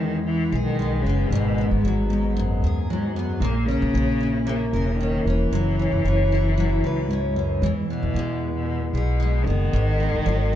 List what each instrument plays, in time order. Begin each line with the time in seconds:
Already playing: upright bass E2, steel-string acoustic guitar E3 G#3 B3
0.00 cello D#3
0.24 cello E3
0.52 upright bass B1, steel-string acoustic guitar G#4
0.64 cello D#3
0.79 steel-string acoustic guitar G#3
1.01 upright bass F#1, cello C#3
1.06 steel-string acoustic guitar B3
1.28 upright bass G#1, cello B2
1.32 steel-string acoustic guitar G#2
1.58 steel-string acoustic guitar B3
1.69 upright bass G#1, cello G#2
1.83 upright bass G#1, steel-string acoustic guitar F#3
2.08 cello G#2, steel-string acoustic guitar D#4
2.33 cello F#2, steel-string acoustic guitar G#2
2.62 upright bass D#2, steel-string acoustic guitar G#4
2.87 cello G#2, steel-string acoustic guitar F#3
3.13 cello F#2, steel-string acoustic guitar B3
3.39 upright bass A#1, cello A#2, steel-string acoustic guitar A#3
3.66 cello C#3, steel-string acoustic guitar C#4
3.82 upright bass A#1
3.94 upright bass A#1, steel-string acoustic guitar C#4
4.20 steel-string acoustic guitar E4
4.45 cello C#3, steel-string acoustic guitar A#3
4.72 upright bass E1, cello C#3, steel-string acoustic guitar A#4
4.97 cello D#3, steel-string acoustic guitar C#4
5.22 upright bass E1, cello E3
5.27 steel-string acoustic guitar C#4
5.51 upright bass F#1, steel-string acoustic guitar F#3
5.79 steel-string acoustic guitar C#4
5.92 upright bass F#1
6.04 upright bass F#1, steel-string acoustic guitar C#4
6.32 steel-string acoustic guitar E4
6.58 steel-string acoustic guitar F#3
6.82 upright bass C#2, steel-string acoustic guitar B4
7.07 cello G#2, steel-string acoustic guitar C#4
7.33 cello F#2, steel-string acoustic guitar C#4
7.59 upright bass E2, cello G#2
7.63 steel-string acoustic guitar E3
7.86 cello B2
7.90 steel-string acoustic guitar B3
8.03 upright bass E2
8.14 upright bass E2, steel-string acoustic guitar G#3
8.55 cello B2
8.92 upright bass B1, cello B2, steel-string acoustic guitar G#4
9.20 steel-string acoustic guitar G#3
9.44 upright bass F#1, cello D#3, steel-string acoustic guitar B3
9.73 upright bass G#1, steel-string acoustic guitar G#2
10.00 steel-string acoustic guitar B3
10.14 upright bass G#1
10.26 upright bass G#1, steel-string acoustic guitar F#3